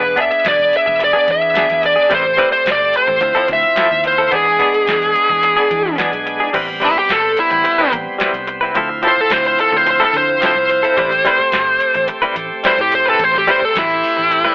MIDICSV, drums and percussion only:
0, 0, Header, 1, 2, 480
1, 0, Start_track
1, 0, Key_signature, 0, "minor"
1, 0, Tempo, 554529
1, 1822, Time_signature, 4, 2, 24, 8
1, 12592, End_track
2, 0, Start_track
2, 0, Title_t, "Drums"
2, 147, Note_on_c, 9, 36, 81
2, 148, Note_on_c, 9, 42, 58
2, 234, Note_off_c, 9, 36, 0
2, 234, Note_off_c, 9, 42, 0
2, 272, Note_on_c, 9, 42, 38
2, 359, Note_off_c, 9, 42, 0
2, 387, Note_on_c, 9, 42, 82
2, 396, Note_on_c, 9, 38, 97
2, 473, Note_off_c, 9, 42, 0
2, 483, Note_off_c, 9, 38, 0
2, 512, Note_on_c, 9, 36, 74
2, 515, Note_on_c, 9, 42, 35
2, 598, Note_off_c, 9, 36, 0
2, 601, Note_off_c, 9, 42, 0
2, 633, Note_on_c, 9, 42, 60
2, 720, Note_off_c, 9, 42, 0
2, 752, Note_on_c, 9, 36, 89
2, 838, Note_off_c, 9, 36, 0
2, 868, Note_on_c, 9, 42, 85
2, 955, Note_off_c, 9, 42, 0
2, 1107, Note_on_c, 9, 36, 85
2, 1107, Note_on_c, 9, 42, 58
2, 1193, Note_off_c, 9, 42, 0
2, 1194, Note_off_c, 9, 36, 0
2, 1344, Note_on_c, 9, 42, 87
2, 1354, Note_on_c, 9, 38, 109
2, 1431, Note_off_c, 9, 42, 0
2, 1440, Note_off_c, 9, 38, 0
2, 1469, Note_on_c, 9, 42, 39
2, 1478, Note_on_c, 9, 38, 33
2, 1555, Note_off_c, 9, 42, 0
2, 1565, Note_off_c, 9, 38, 0
2, 1586, Note_on_c, 9, 42, 66
2, 1672, Note_off_c, 9, 42, 0
2, 1823, Note_on_c, 9, 42, 77
2, 1824, Note_on_c, 9, 36, 97
2, 1909, Note_off_c, 9, 42, 0
2, 1911, Note_off_c, 9, 36, 0
2, 2064, Note_on_c, 9, 36, 74
2, 2064, Note_on_c, 9, 42, 58
2, 2151, Note_off_c, 9, 36, 0
2, 2151, Note_off_c, 9, 42, 0
2, 2188, Note_on_c, 9, 42, 36
2, 2275, Note_off_c, 9, 42, 0
2, 2302, Note_on_c, 9, 42, 72
2, 2312, Note_on_c, 9, 38, 94
2, 2389, Note_off_c, 9, 42, 0
2, 2398, Note_off_c, 9, 38, 0
2, 2427, Note_on_c, 9, 36, 69
2, 2513, Note_off_c, 9, 36, 0
2, 2540, Note_on_c, 9, 42, 56
2, 2627, Note_off_c, 9, 42, 0
2, 2666, Note_on_c, 9, 36, 88
2, 2753, Note_off_c, 9, 36, 0
2, 2777, Note_on_c, 9, 42, 76
2, 2863, Note_off_c, 9, 42, 0
2, 2900, Note_on_c, 9, 42, 34
2, 2987, Note_off_c, 9, 42, 0
2, 3015, Note_on_c, 9, 42, 54
2, 3021, Note_on_c, 9, 36, 85
2, 3024, Note_on_c, 9, 38, 33
2, 3101, Note_off_c, 9, 42, 0
2, 3107, Note_off_c, 9, 36, 0
2, 3111, Note_off_c, 9, 38, 0
2, 3141, Note_on_c, 9, 42, 34
2, 3227, Note_off_c, 9, 42, 0
2, 3256, Note_on_c, 9, 42, 85
2, 3266, Note_on_c, 9, 38, 110
2, 3343, Note_off_c, 9, 42, 0
2, 3352, Note_off_c, 9, 38, 0
2, 3495, Note_on_c, 9, 42, 58
2, 3582, Note_off_c, 9, 42, 0
2, 3738, Note_on_c, 9, 42, 70
2, 3741, Note_on_c, 9, 36, 100
2, 3824, Note_off_c, 9, 42, 0
2, 3828, Note_off_c, 9, 36, 0
2, 3979, Note_on_c, 9, 42, 54
2, 3981, Note_on_c, 9, 36, 82
2, 4065, Note_off_c, 9, 42, 0
2, 4068, Note_off_c, 9, 36, 0
2, 4105, Note_on_c, 9, 42, 36
2, 4192, Note_off_c, 9, 42, 0
2, 4219, Note_on_c, 9, 42, 78
2, 4229, Note_on_c, 9, 38, 92
2, 4306, Note_off_c, 9, 42, 0
2, 4316, Note_off_c, 9, 38, 0
2, 4345, Note_on_c, 9, 42, 35
2, 4432, Note_off_c, 9, 42, 0
2, 4463, Note_on_c, 9, 42, 57
2, 4549, Note_off_c, 9, 42, 0
2, 4585, Note_on_c, 9, 36, 89
2, 4671, Note_off_c, 9, 36, 0
2, 4700, Note_on_c, 9, 42, 84
2, 4786, Note_off_c, 9, 42, 0
2, 4941, Note_on_c, 9, 36, 80
2, 4941, Note_on_c, 9, 42, 57
2, 5028, Note_off_c, 9, 36, 0
2, 5028, Note_off_c, 9, 42, 0
2, 5179, Note_on_c, 9, 42, 86
2, 5188, Note_on_c, 9, 38, 103
2, 5266, Note_off_c, 9, 42, 0
2, 5275, Note_off_c, 9, 38, 0
2, 5307, Note_on_c, 9, 42, 42
2, 5393, Note_off_c, 9, 42, 0
2, 5425, Note_on_c, 9, 42, 64
2, 5511, Note_off_c, 9, 42, 0
2, 5662, Note_on_c, 9, 36, 103
2, 5662, Note_on_c, 9, 42, 75
2, 5662, Note_on_c, 9, 49, 86
2, 5748, Note_off_c, 9, 36, 0
2, 5749, Note_off_c, 9, 42, 0
2, 5749, Note_off_c, 9, 49, 0
2, 5785, Note_on_c, 9, 42, 39
2, 5871, Note_off_c, 9, 42, 0
2, 5899, Note_on_c, 9, 42, 58
2, 5986, Note_off_c, 9, 42, 0
2, 6023, Note_on_c, 9, 36, 77
2, 6110, Note_off_c, 9, 36, 0
2, 6139, Note_on_c, 9, 42, 71
2, 6148, Note_on_c, 9, 38, 98
2, 6225, Note_off_c, 9, 42, 0
2, 6235, Note_off_c, 9, 38, 0
2, 6379, Note_on_c, 9, 42, 56
2, 6465, Note_off_c, 9, 42, 0
2, 6501, Note_on_c, 9, 42, 38
2, 6587, Note_off_c, 9, 42, 0
2, 6620, Note_on_c, 9, 42, 78
2, 6707, Note_off_c, 9, 42, 0
2, 6743, Note_on_c, 9, 36, 75
2, 6743, Note_on_c, 9, 42, 35
2, 6830, Note_off_c, 9, 36, 0
2, 6830, Note_off_c, 9, 42, 0
2, 6862, Note_on_c, 9, 42, 60
2, 6948, Note_off_c, 9, 42, 0
2, 7097, Note_on_c, 9, 42, 85
2, 7107, Note_on_c, 9, 38, 111
2, 7184, Note_off_c, 9, 42, 0
2, 7193, Note_off_c, 9, 38, 0
2, 7221, Note_on_c, 9, 42, 36
2, 7307, Note_off_c, 9, 42, 0
2, 7336, Note_on_c, 9, 42, 64
2, 7422, Note_off_c, 9, 42, 0
2, 7576, Note_on_c, 9, 42, 72
2, 7578, Note_on_c, 9, 36, 97
2, 7662, Note_off_c, 9, 42, 0
2, 7664, Note_off_c, 9, 36, 0
2, 7813, Note_on_c, 9, 42, 64
2, 7900, Note_off_c, 9, 42, 0
2, 7941, Note_on_c, 9, 36, 77
2, 8027, Note_off_c, 9, 36, 0
2, 8052, Note_on_c, 9, 42, 78
2, 8061, Note_on_c, 9, 38, 104
2, 8138, Note_off_c, 9, 42, 0
2, 8148, Note_off_c, 9, 38, 0
2, 8180, Note_on_c, 9, 42, 36
2, 8266, Note_off_c, 9, 42, 0
2, 8298, Note_on_c, 9, 42, 59
2, 8384, Note_off_c, 9, 42, 0
2, 8539, Note_on_c, 9, 42, 93
2, 8626, Note_off_c, 9, 42, 0
2, 8662, Note_on_c, 9, 36, 87
2, 8664, Note_on_c, 9, 42, 39
2, 8748, Note_off_c, 9, 36, 0
2, 8751, Note_off_c, 9, 42, 0
2, 8778, Note_on_c, 9, 42, 67
2, 8864, Note_off_c, 9, 42, 0
2, 9019, Note_on_c, 9, 42, 90
2, 9028, Note_on_c, 9, 38, 105
2, 9105, Note_off_c, 9, 42, 0
2, 9115, Note_off_c, 9, 38, 0
2, 9258, Note_on_c, 9, 42, 64
2, 9344, Note_off_c, 9, 42, 0
2, 9386, Note_on_c, 9, 42, 36
2, 9473, Note_off_c, 9, 42, 0
2, 9499, Note_on_c, 9, 36, 104
2, 9501, Note_on_c, 9, 42, 80
2, 9585, Note_off_c, 9, 36, 0
2, 9587, Note_off_c, 9, 42, 0
2, 9625, Note_on_c, 9, 42, 38
2, 9712, Note_off_c, 9, 42, 0
2, 9741, Note_on_c, 9, 42, 59
2, 9828, Note_off_c, 9, 42, 0
2, 9861, Note_on_c, 9, 36, 72
2, 9947, Note_off_c, 9, 36, 0
2, 9973, Note_on_c, 9, 42, 74
2, 9983, Note_on_c, 9, 38, 99
2, 10060, Note_off_c, 9, 42, 0
2, 10070, Note_off_c, 9, 38, 0
2, 10215, Note_on_c, 9, 42, 59
2, 10302, Note_off_c, 9, 42, 0
2, 10339, Note_on_c, 9, 42, 36
2, 10426, Note_off_c, 9, 42, 0
2, 10455, Note_on_c, 9, 42, 83
2, 10541, Note_off_c, 9, 42, 0
2, 10578, Note_on_c, 9, 42, 37
2, 10580, Note_on_c, 9, 36, 79
2, 10665, Note_off_c, 9, 42, 0
2, 10667, Note_off_c, 9, 36, 0
2, 10699, Note_on_c, 9, 42, 63
2, 10785, Note_off_c, 9, 42, 0
2, 10939, Note_on_c, 9, 42, 77
2, 10948, Note_on_c, 9, 38, 109
2, 11025, Note_off_c, 9, 42, 0
2, 11035, Note_off_c, 9, 38, 0
2, 11066, Note_on_c, 9, 42, 37
2, 11153, Note_off_c, 9, 42, 0
2, 11183, Note_on_c, 9, 42, 61
2, 11269, Note_off_c, 9, 42, 0
2, 11420, Note_on_c, 9, 36, 94
2, 11420, Note_on_c, 9, 42, 75
2, 11507, Note_off_c, 9, 36, 0
2, 11507, Note_off_c, 9, 42, 0
2, 11558, Note_on_c, 9, 38, 36
2, 11644, Note_off_c, 9, 38, 0
2, 11665, Note_on_c, 9, 42, 60
2, 11751, Note_off_c, 9, 42, 0
2, 11787, Note_on_c, 9, 36, 74
2, 11874, Note_off_c, 9, 36, 0
2, 11907, Note_on_c, 9, 42, 78
2, 11916, Note_on_c, 9, 38, 104
2, 11993, Note_off_c, 9, 42, 0
2, 12003, Note_off_c, 9, 38, 0
2, 12032, Note_on_c, 9, 42, 36
2, 12119, Note_off_c, 9, 42, 0
2, 12150, Note_on_c, 9, 46, 67
2, 12236, Note_off_c, 9, 46, 0
2, 12392, Note_on_c, 9, 42, 88
2, 12478, Note_off_c, 9, 42, 0
2, 12511, Note_on_c, 9, 36, 82
2, 12512, Note_on_c, 9, 42, 37
2, 12592, Note_off_c, 9, 36, 0
2, 12592, Note_off_c, 9, 42, 0
2, 12592, End_track
0, 0, End_of_file